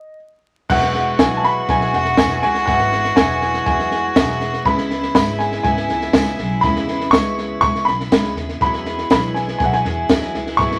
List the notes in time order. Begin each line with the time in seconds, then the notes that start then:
Already playing: D#5
0.69 E1 E2 E3 F#3 G#3 B3 E4 F#4 G#4 B4 E5 F#5, kick, snare, crash
0.82 snare
0.94 B3 E4 G#4, snare
1.19 B1 E3 F#3 G#3 B3 E4 F#4 G#4 B4 E5 G#5, kick, snare, tambourine
1.37 A5
1.44 G#3 E4 F#4 E5 B5, snare
1.68 B1 F#3 G#3 B3 E4 F#4 G#4 B4 E5 G#5, kick, snare
1.81 snare
1.93 E1 B3 E4 G#4 F#5, snare
2.05 snare
2.17 E1 E3 F#3 G#3 B3 E4 F#4 G#4 B4 E5 G#5, kick, snare, tambourine
2.30 snare
2.42 C#2 B3 E4 G#4 G#5, snare
2.54 snare
2.66 G#1 E2 E3 F#3 G#3 B3 E4 F#4 B4 E5 F#5, kick, snare
2.70 G#4
2.79 snare
2.92 B3 E4 G#4, snare
3.05 snare
3.16 E1 E3 F#3 G#3 B3 E4 F#4 G#4 B4 E5 G#5, kick, snare, tambourine
3.41 G#3 E4 F#4 B4 E5, snare
3.54 snare
3.66 E2 F#3 G#3 B3 E4 F#4 G#4 B4 E5 G#5, kick, snare
3.79 snare
3.91 B3 E4 G#4, snare
4.15 E1 E3 F#3 G#3 B3 E4 F#4 G#4 B4 E5, kick, snare, tambourine
4.28 snare
4.41 B3 E4 G#4, snare
4.53 snare
4.64 C#2 C#3 G#3 B3 C#4 E4 G#4 B4 E5 B5, kick, snare
4.78 snare
4.90 B3 E4 G#4, snare
5.03 snare
5.15 G#1 C#3 G#3 B3 C#4 E4 G#4 B4 E5 B5, kick, snare, tambourine
5.39 G#3 C#4 E4 B4 E5 G#5, snare
5.52 snare
5.63 G#1 G#3 B3 C#4 E4 G#4 B4 E5 G#5, kick, snare
5.77 snare
5.88 C#2 B3 E4 G#4, snare
6.01 snare
6.13 C#2 C#3 G#3 B3 C#4 E4 G#4 B4 E5, kick, snare, tambourine
6.26 snare
6.38 B1 B3 E4 G#4, snare
6.61 C#2 E2 C#3 G#3 B3 C#4 E4 B4 E5 B5, kick, snare
6.65 E4 G#4
6.76 snare
6.88 B3 E4 G#4, snare
7.01 snare
7.11 C#2 C#3 G#3 B3 C#4 E4 B4 E5 C#6, kick, snare, tambourine
7.15 E4 G#4
7.37 G#3 C#4 E4 B4 E5, snare
7.61 C#3 G#3 B3 C#4 E4 B4 E5 C#6, kick, snare
7.66 G#4
7.75 snare
7.85 B1 G#4 B5, snare
7.89 B3 E4
8.00 snare
8.12 C#2 C#3 G#3 B3 C#4 E4 G#4 E5, kick, snare, tambourine
8.24 snare
8.36 D#2 E4 G#4, snare
8.40 B3
8.49 snare
8.61 E2 E3 F#3 G#3 B3 E4 F#4 G#4 B4 E5 B5, kick, snare
8.73 snare
8.85 B3 E4 G#4, snare
8.98 snare
9.10 B1 E3 F#3 G#3 B3 E4 F#4 G#4 E5 B5, kick, snare, tambourine
9.34 G#3 E4 F#4 B4 E5 G#5, snare
9.48 snare
9.58 B1 F#3 G#3 E4 F#4 B4 E5 G#5, kick, snare
9.63 B3 E4 G#4 F#5
9.73 G#5, snare
9.85 E2 B3 E4 G#4, snare
10.09 E2 E3 F#3 G#3 B3 E4 F#4 G#4 B4 E5, kick, snare, tambourine
10.22 snare
10.34 C#2 B3 E4 G#4, snare
10.47 snare
10.57 E2 G#2 E3 F#3 G#3 B3 E4 F#4 G#4 B4 E5 C#6, kick, snare
10.72 snare